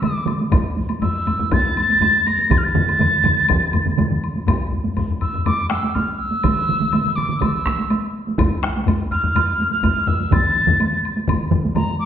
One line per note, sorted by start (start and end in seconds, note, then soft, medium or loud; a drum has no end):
0.02 0.38 D6 medium
0.02 taiko mid medium
0.02 taiko high medium
0.02 high woodblock soft
0.26 taiko mid medium
0.26 taiko high medium
0.26 high woodblock soft
0.40 taiko high medium
0.52 taiko loud
0.52 taiko low-mid medium
0.52 taiko high medium
0.52 high woodblock soft
0.77 taiko high medium
0.89 taiko high medium
0.89 high woodblock soft
1.02 1.54 E6 medium
1.02 taiko low-mid loud
1.02 taiko high medium
1.02 high woodblock soft
1.27 taiko low-mid medium
1.27 taiko high medium
1.27 high woodblock soft
1.39 taiko low-mid medium
1.39 taiko high medium
1.51 1.77 A6 medium
1.51 taiko medium
1.51 taiko low-mid loud
1.51 taiko high medium
1.51 high woodblock soft
1.76 2.28 A6 medium
1.76 taiko high medium
1.76 high woodblock soft
1.89 taiko high medium
2.01 taiko low-mid medium
2.01 taiko high medium
2.01 high woodblock soft
2.27 2.53 A#6 medium
2.27 taiko high soft
2.27 high woodblock soft
2.38 taiko high soft
2.51 2.59 A6 medium
2.51 taiko medium
2.51 taiko low-mid medium
2.51 taiko mid medium
2.51 taiko high medium
2.51 high woodblock soft
2.58 2.66 F6 medium
2.64 4.24 A6 medium
2.74 taiko low-mid loud
2.74 taiko mid medium
2.74 taiko high soft
2.88 taiko high soft
2.88 high woodblock soft
2.99 taiko low-mid medium
2.99 taiko mid loud
2.99 taiko high medium
2.99 high woodblock soft
3.23 taiko low-mid medium
3.23 taiko mid medium
3.23 taiko high soft
3.23 high woodblock soft
3.49 taiko medium
3.49 taiko low-mid medium
3.49 taiko mid medium
3.49 taiko high medium
3.49 high woodblock medium
3.73 taiko low-mid medium
3.73 taiko mid medium
3.73 taiko high soft
3.73 high woodblock soft
3.86 taiko low-mid medium
3.86 taiko mid medium
3.86 taiko high medium
3.98 taiko low-mid medium
3.98 taiko mid loud
3.98 taiko high medium
3.98 high woodblock soft
4.11 taiko low-mid medium
4.11 taiko mid medium
4.24 high woodblock soft
4.36 taiko high soft
4.47 taiko medium
4.47 taiko low-mid medium
4.47 taiko high medium
4.47 high woodblock medium
4.72 taiko low-mid medium
4.85 taiko low-mid medium
4.85 taiko high medium
4.97 taiko medium
4.97 taiko low-mid medium
4.97 taiko high medium
4.97 high woodblock soft
5.10 taiko low-mid medium
5.21 5.45 E6 medium
5.21 taiko low-mid medium
5.21 high woodblock soft
5.34 taiko low-mid medium
5.46 5.69 D6 medium
5.46 taiko low-mid medium
5.46 taiko high medium
5.46 high woodblock soft
5.70 5.96 E6 medium
5.70 taiko rim medium
5.70 taiko high medium
5.83 taiko high medium
5.94 6.15 F6 medium
5.94 taiko medium
5.94 taiko high medium
5.94 high woodblock soft
6.15 7.17 E6 loud
6.15 6.20 F6 medium
6.32 taiko high medium
6.43 taiko loud
6.43 taiko mid medium
6.43 taiko high medium
6.43 high woodblock soft
6.69 taiko mid medium
6.81 taiko mid medium
6.81 taiko high medium
6.92 taiko mid medium
6.92 taiko high medium
6.92 high woodblock soft
7.06 taiko mid medium
7.16 7.41 D6 medium
7.16 taiko mid medium
7.16 high woodblock soft
7.29 taiko mid medium
7.29 taiko high medium
7.40 8.14 E6 medium
7.40 taiko medium
7.40 taiko mid medium
7.40 taiko high medium
7.40 high woodblock soft
7.66 taiko rim medium
7.66 taiko medium
7.66 taiko high soft
7.78 taiko high medium
7.90 taiko high medium
7.90 high woodblock soft
8.27 taiko high medium
8.38 taiko loud
8.38 taiko low-mid medium
8.38 taiko high medium
8.38 high woodblock medium
8.63 taiko rim medium
8.76 taiko high medium
8.86 taiko medium
8.86 taiko low-mid loud
8.86 taiko high medium
8.86 high woodblock soft
9.11 9.68 F6 medium
9.11 taiko low-mid medium
9.11 high woodblock soft
9.24 taiko low-mid medium
9.24 taiko high soft
9.35 taiko low-mid medium
9.35 taiko high medium
9.35 high woodblock medium
9.60 taiko high medium
9.71 10.09 F6 medium
9.71 taiko high medium
9.83 taiko medium
9.83 taiko low-mid medium
9.83 taiko high medium
9.83 high woodblock soft
10.07 10.35 E6 medium
10.07 taiko low-mid loud
10.20 taiko high medium
10.32 11.29 A6 medium
10.32 taiko medium
10.32 taiko low-mid medium
10.32 taiko mid medium
10.32 taiko high medium
10.32 high woodblock medium
10.67 taiko low-mid medium
10.67 taiko mid medium
10.67 taiko high medium
10.80 taiko high medium
10.80 high woodblock soft
11.05 high woodblock soft
11.16 taiko high medium
11.27 taiko medium
11.27 taiko low-mid loud
11.27 taiko mid loud
11.27 taiko high medium
11.27 high woodblock medium
11.51 taiko medium
11.51 taiko low-mid loud
11.51 taiko mid loud
11.51 taiko high soft
11.65 taiko high medium
11.75 11.98 A#5 medium
11.75 taiko low-mid medium
11.75 taiko mid medium
11.75 taiko high medium
11.75 high woodblock soft
11.99 12.05 D6 medium